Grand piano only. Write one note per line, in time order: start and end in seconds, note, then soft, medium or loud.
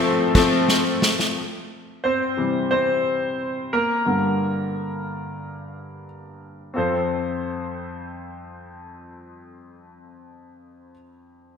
0.00 0.35 F3 loud
0.00 0.35 A3 loud
0.00 1.38 A#3 medium
0.00 0.36 C4 loud
0.00 1.37 A#4 medium
0.00 1.38 C5 medium
0.35 0.58 F3 loud
0.35 0.58 A3 loud
0.35 0.58 C4 loud
2.04 2.67 C4 medium
2.04 2.69 C5 medium
2.37 3.34 C3 soft
2.37 3.34 E3 soft
2.37 3.35 G3 soft
2.71 3.68 C4 medium
2.71 3.75 C5 medium
3.73 4.05 A#3 medium
3.73 6.04 A#4 medium
4.05 6.71 G2 soft
4.05 6.72 D3 soft
4.05 6.72 A#3 soft
6.74 10.91 F2 medium
6.74 10.90 C4 medium
6.74 10.91 F4 medium
6.74 10.92 A4 medium
6.78 10.92 C5 medium